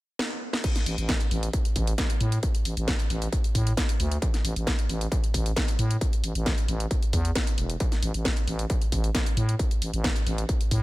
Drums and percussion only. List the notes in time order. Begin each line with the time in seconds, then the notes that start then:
0.19 snare
0.53 snare
0.64 kick, closed hi-hat, crash
0.76 snare, closed hi-hat
0.86 open hi-hat
0.98 closed hi-hat
1.09 kick, snare, closed hi-hat
1.21 closed hi-hat
1.31 open hi-hat
1.43 closed hi-hat
1.53 kick, closed hi-hat
1.65 closed hi-hat
1.76 kick, open hi-hat
1.87 closed hi-hat
1.98 kick, snare, closed hi-hat
2.10 closed hi-hat
2.21 open hi-hat
2.32 closed hi-hat
2.43 kick, closed hi-hat
2.55 closed hi-hat
2.65 open hi-hat
2.77 closed hi-hat
2.88 kick, snare, closed hi-hat
3.00 closed hi-hat
3.10 open hi-hat
3.22 closed hi-hat
3.33 kick, closed hi-hat
3.44 closed hi-hat
3.55 kick, open hi-hat
3.67 closed hi-hat
3.77 kick, snare, closed hi-hat
3.89 closed hi-hat
4.00 open hi-hat
4.12 closed hi-hat
4.22 kick, closed hi-hat
4.34 snare, closed hi-hat
4.45 open hi-hat
4.56 closed hi-hat
4.67 kick, snare, closed hi-hat
4.79 closed hi-hat
4.89 open hi-hat
5.01 closed hi-hat
5.12 kick, closed hi-hat
5.24 closed hi-hat
5.34 kick, open hi-hat
5.46 closed hi-hat
5.56 kick, snare, closed hi-hat
5.68 closed hi-hat
5.79 open hi-hat
5.91 closed hi-hat
6.01 kick, closed hi-hat
6.13 closed hi-hat
6.24 open hi-hat
6.35 closed hi-hat
6.46 kick, snare, closed hi-hat
6.58 closed hi-hat
6.68 open hi-hat
6.80 closed hi-hat
6.91 kick, closed hi-hat
7.03 closed hi-hat
7.13 kick, open hi-hat
7.25 closed hi-hat
7.35 kick, snare, closed hi-hat
7.47 closed hi-hat
7.58 open hi-hat
7.70 closed hi-hat
7.80 kick, closed hi-hat
7.92 snare, closed hi-hat
8.03 open hi-hat
8.14 closed hi-hat
8.25 kick, snare, closed hi-hat
8.37 closed hi-hat
8.47 open hi-hat
8.59 closed hi-hat
8.70 kick, closed hi-hat
8.81 closed hi-hat
8.92 kick, open hi-hat
9.04 closed hi-hat
9.15 kick, snare, closed hi-hat
9.26 closed hi-hat
9.37 open hi-hat
9.49 closed hi-hat
9.59 kick, closed hi-hat
9.71 closed hi-hat
9.82 open hi-hat
9.94 closed hi-hat
10.04 kick, snare, closed hi-hat
10.16 closed hi-hat
10.27 open hi-hat
10.38 closed hi-hat
10.49 kick, closed hi-hat
10.61 closed hi-hat
10.71 kick, open hi-hat